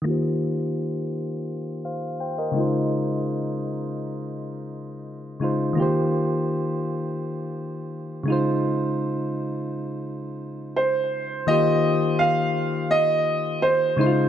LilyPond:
<<
  \new Staff \with { instrumentName = "Grand piano" } { \time 4/4 \key ees \mixolydian \tempo 4 = 84 r1 | r1 | r1 | r2. c''4 |
ees''4 f''4 ees''4 c''4 | }
  \new Staff \with { instrumentName = "Synth keys" } { \time 4/4 \key ees \mixolydian << { r2 r8 <c'' f''>8 <c'' g''>16 <bes' ees''>8 r16 | r1 | r1 | r1 |
r1 | } \\ { <ees bes f' g' c''>2.~ <ees bes f' g' c''>8 <des aes ees' f' c''>8~ | <des aes ees' f' c''>2.~ <des aes ees' f' c''>8 <des aes ees' f' c''>8 | <ees bes f' g' c''>2.~ <ees bes f' g' c''>8 <des aes ees' f' c''>8~ | <des aes ees' f' c''>2.~ <des aes ees' f' c''>8 r8 |
<ees bes f' g' c''>4. r2 <des aes ees' fes' f' c''>8 | } >> }
>>